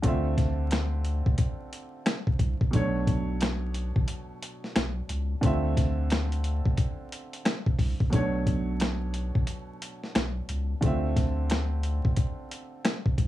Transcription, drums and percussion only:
0.03 kick, closed hi-hat
0.38 kick, snare, closed hi-hat
0.71 cross-stick, snare, closed hi-hat
1.05 closed hi-hat
1.26 kick
1.38 kick, closed hi-hat
1.73 closed hi-hat
2.06 cross-stick, snare, closed hi-hat
2.27 kick
2.39 kick, closed hi-hat
2.61 kick
2.73 kick, closed hi-hat
3.07 kick, closed hi-hat
3.41 cross-stick, snare, closed hi-hat
3.74 closed hi-hat
3.96 kick
4.08 closed hi-hat
4.43 closed hi-hat
4.64 snare
4.76 cross-stick, snare, closed hi-hat
5.09 closed hi-hat
5.43 kick, closed hi-hat
5.77 kick, snare, closed hi-hat
6.10 cross-stick, snare, closed hi-hat
6.32 closed hi-hat
6.44 closed hi-hat
6.66 kick
6.78 kick, closed hi-hat
7.12 closed hi-hat
7.33 closed hi-hat
7.45 cross-stick, snare, closed hi-hat
7.66 kick
7.79 kick, open hi-hat
8.00 kick
8.13 kick, closed hi-hat
8.47 kick, closed hi-hat
8.80 cross-stick, snare, closed hi-hat
9.14 closed hi-hat
9.35 kick
9.47 closed hi-hat
9.82 closed hi-hat
10.04 snare
10.15 cross-stick, snare, closed hi-hat
10.49 closed hi-hat
10.82 kick, closed hi-hat
11.16 kick, snare, closed hi-hat
11.50 cross-stick, snare, closed hi-hat
11.83 closed hi-hat
12.05 kick
12.16 kick, closed hi-hat
12.51 closed hi-hat
12.85 cross-stick, snare, closed hi-hat
13.06 kick
13.18 kick, closed hi-hat

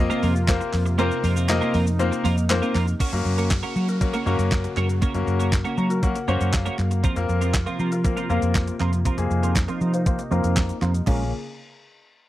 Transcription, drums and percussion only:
0.10 shaker
0.23 open hi-hat, shaker
0.36 shaker
0.48 kick, snare, clap, closed hi-hat, shaker
0.61 shaker
0.73 clap, open hi-hat, shaker
0.86 shaker
0.99 closed hi-hat, shaker
1.11 shaker
1.24 open hi-hat, shaker
1.36 shaker
1.49 snare, clap, closed hi-hat, shaker
1.62 shaker
1.74 open hi-hat, shaker
1.87 shaker
1.99 closed hi-hat, shaker
2.12 shaker
2.25 open hi-hat, shaker
2.37 shaker
2.50 snare, clap, closed hi-hat, shaker
2.62 shaker
2.75 clap, open hi-hat, shaker
2.88 shaker
3.00 kick, closed hi-hat, crash, shaker
3.13 closed hi-hat, shaker
3.25 shaker
3.38 closed hi-hat, shaker
3.51 kick, snare, clap, closed hi-hat, shaker
3.63 closed hi-hat, shaker
3.76 shaker
3.88 closed hi-hat, shaker
4.01 kick, closed hi-hat, shaker
4.14 closed hi-hat, shaker
4.26 shaker
4.39 closed hi-hat, shaker
4.52 kick, snare, clap, closed hi-hat, shaker
4.64 closed hi-hat, shaker
4.77 clap, shaker
4.89 closed hi-hat, shaker
5.02 kick, closed hi-hat, shaker
5.14 closed hi-hat, shaker
5.27 shaker
5.40 closed hi-hat, shaker
5.52 kick, snare, clap, closed hi-hat, shaker
5.65 closed hi-hat, shaker
5.78 shaker
5.90 closed hi-hat, shaker
6.03 kick, closed hi-hat, shaker
6.16 closed hi-hat, shaker
6.28 shaker
6.41 closed hi-hat, shaker
6.53 kick, snare, clap, closed hi-hat, shaker
6.66 closed hi-hat, shaker
6.79 clap, shaker
6.91 closed hi-hat, shaker
7.04 kick, closed hi-hat, shaker
7.16 closed hi-hat, shaker
7.29 shaker
7.42 closed hi-hat, shaker
7.54 kick, snare, clap, closed hi-hat, shaker
7.67 closed hi-hat, shaker
7.79 shaker
7.92 closed hi-hat, shaker
8.04 kick, closed hi-hat, shaker
8.17 closed hi-hat, shaker
8.30 shaker
8.42 closed hi-hat, shaker
8.55 kick, snare, clap, closed hi-hat, shaker
8.68 closed hi-hat, shaker
8.80 clap, shaker
8.93 closed hi-hat, shaker
9.05 kick, closed hi-hat, shaker
9.18 closed hi-hat, shaker
9.31 shaker
9.43 closed hi-hat, shaker
9.56 kick, snare, clap, closed hi-hat, shaker
9.68 closed hi-hat, shaker
9.81 shaker
9.94 closed hi-hat, shaker
10.06 kick, closed hi-hat, shaker
10.19 closed hi-hat, shaker
10.32 shaker
10.44 closed hi-hat, shaker
10.57 kick, snare, clap, closed hi-hat, shaker
10.69 closed hi-hat, shaker
10.82 clap, shaker
10.94 closed hi-hat, shaker
11.07 kick, clap, crash

